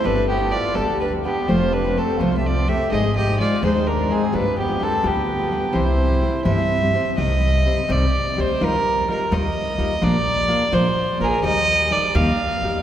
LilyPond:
<<
  \new Staff \with { instrumentName = "Violin" } { \time 6/8 \key c \major \tempo 4. = 84 b'8 g'8 d''8 a'8 b'8 g'8 | c''8 b'8 a'8 c''16. e''32 d''8 e''8 | ees''8 ees''8 d''8 c''8 bes'8 aes'8 | b'8 g'8 a'8 g'4. |
c''4. e''4. | \key c \minor ees''4. d''4 c''8 | bes'4 bes'8 ees''4. | d''4. c''4 bes'32 aes'32 bes'16 |
ees''4 d''8 f''4. | }
  \new Staff \with { instrumentName = "Nylon-string guitar" } { \time 6/8 \key c \major <g b d' g' a'>16 <d' g' a'>16 r16 <d' g' a'>16 <b d' g' a'>16 r16 <g b d' g' a'>16 <d' g' a'>16 r16 <d' g' a'>16 <b d' g' a'>16 r16 | <f a c' a' c''>16 <c' a' c''>16 r16 <c' a' c''>16 <a c' a' c''>16 r16 <f a c' a' c''>16 <c' a' c''>16 r16 <c' a' c''>16 <a c' a' c''>16 r16 | <aes ees' aes' c''>16 <ees' aes' c''>16 r16 <ees' aes' c''>16 <aes ees' aes' c''>16 r16 <aes ees' aes' c''>16 <ees' aes' c''>16 r16 <ees' aes' c''>16 <aes ees' aes' c''>16 r16 | <g d' f' b'>16 <d' f' b'>16 r16 <d' f' b'>16 <g d' f' b'>16 r16 <g d' f' b'>16 <d' f' b'>16 r16 <d' f' b'>16 <g d' f' b'>16 r16 |
<c e g c' e' c''>16 <g c' e' c''>16 r16 <g c' e' c''>16 <g c' e' c''>16 r16 <c e g c' e' c''>16 <g c' e' c''>16 r16 <g c' e' c''>16 <g c' e' c''>16 r16 | \key c \minor <c ees g c' g' c''>16 r8. <g c' g' c''>16 r16 <c ees g c' g' c''>16 r8. <g c' g' c''>16 r16 | <ees g ees' f' bes'>16 r8. <g ees' f' bes'>16 r16 <ees g ees' f' bes'>16 r8. <g ees' f' bes'>16 r16 | <bes, f bes d' f' bes'>16 r8. <bes d' f' bes'>16 r16 <bes, f bes d' f' bes'>16 r8. <bes d' f' bes'>16 r16 |
<ees g ees' g' bes'>16 r8. <g ees' g' bes'>16 r16 <ees g ees' g' bes'>16 r8. <g ees' g' bes'>16 r16 | }
  \new Staff \with { instrumentName = "Trumpet" } { \time 6/8 \key c \major d'8 b8 f'8 d'8 d'8 b8 | f'8 d'8 c'8 f'16. g'32 f'8 g'8 | aes'8 g'8 f'8 ees'8 d'8 c'8 | d'8 b8 c'8 b4. |
e'2 r4 | \key c \minor r2. | r2. | r2. |
r2. | }
  \new Staff \with { instrumentName = "Upright bass" } { \clef bass \time 6/8 \key c \major g,,4. d,4. | f,,4. c,4. | aes,,4. ees,4. | g,,4. d,4. |
c,4. g,4. | \key c \minor c,4. c,8 r8 d,8 | ees,4. ees,8 r8 ees,8 | bes,,4. bes,,8 r8 bes,,8 |
ees,4. ees,8 r8 e,8 | }
>>